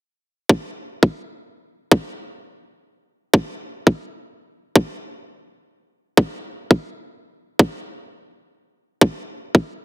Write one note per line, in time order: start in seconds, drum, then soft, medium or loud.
0.49 kick loud
1.03 kick medium
1.92 kick loud
3.34 kick loud
3.87 kick medium
4.76 kick loud
6.17 kick loud
6.71 kick medium
7.59 kick loud
9.01 kick loud
9.55 kick medium